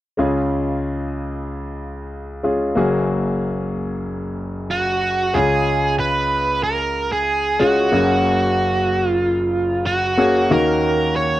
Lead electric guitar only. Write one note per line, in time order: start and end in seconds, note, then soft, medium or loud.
4.71 5.37 F#4 medium
5.34 5.95 G#4 medium
5.99 6.63 B4 medium
6.64 7.12 A#4 medium
7.12 7.62 G#4 medium
7.60 9.07 F#4 medium
9.07 9.85 F4 medium
9.86 10.53 F#4 medium
10.52 11.16 A#4 loud
11.16 11.40 C#5 medium